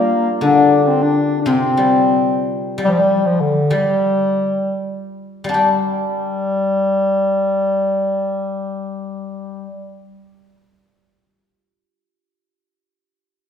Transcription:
Already playing: guzheng G3, bass clarinet A#3, hammered dulcimer D4 F4 G4 A#4
0.41 guzheng D3, bass clarinet D4
0.83 bass clarinet D4
0.88 bass clarinet C4
1.03 bass clarinet D4
1.41 bass clarinet D4
1.46 guzheng C3, bass clarinet C4
1.77 guzheng G3
2.78 guzheng G3
2.85 bass clarinet F3 G3
2.97 bass clarinet G3
3.26 bass clarinet F3
3.40 bass clarinet D3
3.70 guzheng G3, bass clarinet G3
5.44 guzheng G3
5.49 guzheng D4
5.54 bass clarinet G3, guzheng G4

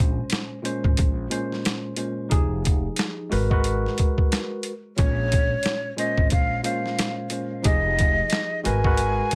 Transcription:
Already playing: upright bass A#1, tine electric piano A#2 G#3 C#4 C5
0.00 kick
0.30 snare, closed hi-hat
0.63 tine electric piano A#2 G#3 C#4 C5, closed hi-hat
0.84 upright bass G#1, kick
0.97 upright bass A#1, kick, closed hi-hat
1.29 tine electric piano A#2 G#3 C#4 C5, closed hi-hat
1.52 snare
1.65 snare, closed hi-hat
1.96 tine electric piano A#2 G#3 C#4 C5, closed hi-hat
2.29 upright bass F1, tine electric piano F3 D#4 G4 G#4, kick, closed hi-hat
2.65 kick, closed hi-hat
2.96 snare, closed hi-hat
3.30 upright bass G#1, tine electric piano G#3 F#4 A#4 B4, open hi-hat
3.50 tine electric piano G#3 F#4 A#4 B4, kick
3.64 closed hi-hat
3.86 snare
3.98 kick, closed hi-hat
4.18 kick
4.32 snare, closed hi-hat
4.63 closed hi-hat
4.96 upright bass A#1, tine electric piano A#2 G#3 C#4 C#5, flute C#5, kick, closed hi-hat
5.32 kick, closed hi-hat
5.63 snare, closed hi-hat
5.96 tine electric piano A#2 G#3 C#4 C5, flute D#5, closed hi-hat
6.18 upright bass G#1, kick
6.30 upright bass A#1, flute F5, kick, closed hi-hat
6.63 tine electric piano A#2 G#3 C#4 C5, flute F5, closed hi-hat
6.86 snare
6.99 snare, closed hi-hat
7.30 tine electric piano A#2 G#3 C#4 C5, closed hi-hat
7.62 upright bass F1, tine electric piano F3 D#4 G4 G#4, flute D#5, kick, closed hi-hat
7.99 kick, closed hi-hat
8.30 snare, closed hi-hat
8.63 upright bass G#1, tine electric piano G#3 F#4 A#4 B4, flute G#5, closed hi-hat
8.84 tine electric piano G#3 F#4 A#4 B4, kick
8.97 closed hi-hat
9.31 closed hi-hat

